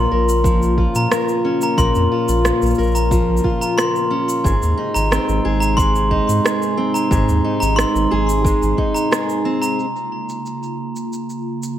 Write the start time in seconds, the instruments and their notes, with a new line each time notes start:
Already playing: steel-string acoustic guitar A#2 C#4 F4 A#4, ambient pad C#3 A#3 F4
0.11 sub bass A#1, steel-string acoustic guitar A#4
0.29 shaker
0.44 steel-string acoustic guitar F3, kick, shaker
0.62 shaker
0.78 steel-string acoustic guitar F4, kick
0.95 sub bass A#2, glockenspiel A#5, shaker
1.11 steel-string acoustic guitar A#4, cross-stick, shaker
1.29 shaker
1.45 steel-string acoustic guitar C#4
1.62 glockenspiel A#5, shaker
1.78 sub bass A#1, steel-string acoustic guitar A#2 A#4, glockenspiel C6, kick, shaker
1.95 sub bass F2, shaker
2.12 steel-string acoustic guitar F4
2.28 sub bass A#1, shaker
2.44 steel-string acoustic guitar C#4, cross-stick, shaker
2.62 sub bass A#1, shaker
2.66 shaker
2.70 shaker
2.75 steel-string acoustic guitar A#4, shaker
2.79 sub bass A#1, shaker
2.83 shaker
2.87 shaker
2.91 glockenspiel A#5, shaker
2.96 shaker
3.11 steel-string acoustic guitar F3, kick, shaker
3.28 sub bass A#1
3.37 shaker
3.44 steel-string acoustic guitar F4, kick
3.61 glockenspiel A#5, shaker
3.78 steel-string acoustic guitar A#4, glockenspiel C6, cross-stick, shaker
3.96 shaker
4.11 steel-string acoustic guitar C#4
4.29 shaker
4.44 sub bass G#1, steel-string acoustic guitar G#2 G#4, ambient pad C3 G#3 D#4, kick, shaker
4.62 sub bass D#2, shaker
4.77 steel-string acoustic guitar D#4
4.94 sub bass G#1, glockenspiel A#5, shaker
5.11 steel-string acoustic guitar C4, cross-stick, shaker
5.28 sub bass G#1, shaker
5.45 sub bass G#1, steel-string acoustic guitar G#4
5.60 glockenspiel A#5, shaker
5.77 steel-string acoustic guitar G#3, glockenspiel C6, kick, shaker
5.96 shaker
6.11 steel-string acoustic guitar D#4, kick
6.28 sub bass G#2, shaker
6.44 steel-string acoustic guitar G#4, cross-stick, shaker
6.62 shaker
6.77 steel-string acoustic guitar C4
6.94 glockenspiel A#5, shaker
7.11 sub bass G#1, steel-string acoustic guitar G#2 G#4, kick, shaker
7.29 sub bass D#2, shaker
7.44 steel-string acoustic guitar D#4
7.60 sub bass G#1, glockenspiel A#5, shaker
7.76 steel-string acoustic guitar C4, glockenspiel C6, cross-stick, shaker
7.95 sub bass G#1, shaker
8.11 sub bass G#1, steel-string acoustic guitar G#4
8.29 shaker
8.45 steel-string acoustic guitar G#3, kick, shaker
8.62 sub bass G#1, shaker
8.78 steel-string acoustic guitar D#4, kick
8.94 glockenspiel A#5, shaker
9.11 steel-string acoustic guitar G#4, cross-stick, shaker
9.29 shaker
9.45 steel-string acoustic guitar C4
9.62 glockenspiel A#5, shaker
9.78 ambient pad C#3 A#3 F4, shaker
9.96 shaker
10.29 shaker
10.46 shaker
10.63 shaker
10.96 shaker
11.13 shaker
11.30 shaker
11.63 shaker